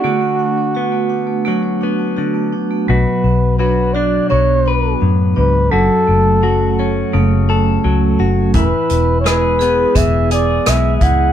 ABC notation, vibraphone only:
X:1
M:4/4
L:1/16
Q:1/4=85
K:Bdor
V:1 name="Vibraphone"
[A,F] A, D A, F A, D A, [A,F] A, D A, F A, D A, | F,2 B,2 D2 F2 B,2 D2 B,2 D2 | F,2 A,2 C2 A2 A,2 C2 A,2 C2 | E2 B,2 E2 G2 B,2 E2 B,2 E2 |]